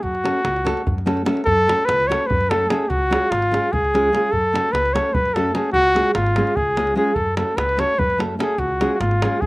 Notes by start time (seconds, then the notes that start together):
0.03 F#2 F#4, davul low
0.15 davul high
0.24 A3 C#4 F#4 A4, davul high
0.45 C#2, davul high
0.56 davul high
0.65 A3 C#4 F#4 A4, davul high
0.77 davul high
0.87 F#2, davul low
0.98 davul high
1.06 A3 C#4 F#4 A4, davul high
1.17 davul high
1.25 A3 C#4 F#4 A4, davul high
1.37 davul high
1.45 F#2 A4, davul low
1.68 A3 C#4 F#4 A4, davul high
1.86 C#2 B4, davul high
2.00 davul high
2.08 A3 C#4 F#4 A4 C#5, davul high
2.27 F#2 B4, davul low
2.41 davul high
2.50 A3 C#4 F#4 A4, davul high
2.70 A3 C#4 F#4 G#4 A4, davul high
2.90 C#2 F#4, davul low
3.10 G#3 C#4 F4 G#4, davul high
3.31 G#1 F4, davul high
3.42 davul high
3.51 G#3 C#4 F4 G#4, davul high
3.72 C#2 G#4, davul low
3.85 davul high
3.94 G#3 C#4 F4 G#4, davul high
4.12 G#3 C#4 F4 G#4, davul high
4.32 F#2 A4, davul low
4.53 A3 C#4 F#4 A4, davul high
4.73 C#2 B4, davul high
4.85 davul high
4.94 A3 C#4 F#4 A4 C#5, davul high
5.14 F#2 B4, davul low
5.26 davul high
5.34 A3 C#4 F#4 A4, davul high
5.54 A3 C#4 F#4 G#4 A4, davul high
5.73 C#2 F#4, davul low
5.86 davul high
5.94 G#3 C#4 F4 G#4, davul high
6.06 davul high
6.15 G#1 F4, davul high
6.26 davul high
6.36 G#3 C#4 F4 G#4, davul high
6.47 davul high
6.56 C#2 G#4, davul low
6.76 G#3 C#4 F4 G#4, davul high
6.87 davul high
6.95 G#3 C#4 F4 G#4
7.15 F#2 A4, davul low
7.37 A3 C#4 F#4 A4, davul high
7.57 C#2 B4, davul high
7.69 davul high
7.77 A3 C#4 F#4 A4 C#5, davul high
7.98 F#2 B4, davul low
8.10 davul high
8.18 A3 C#4 F#4 A4, davul high
8.39 A3 C#4 F#4 G#4 A4, davul high
8.58 C#2 F#4, davul low
8.81 G#3 C#4 F4 G#4, davul high
8.94 F#4
9.00 G#1 F4, davul high
9.11 davul high
9.22 G#3 C#4 F4 G#4, davul high
9.41 C#2 G#4, davul low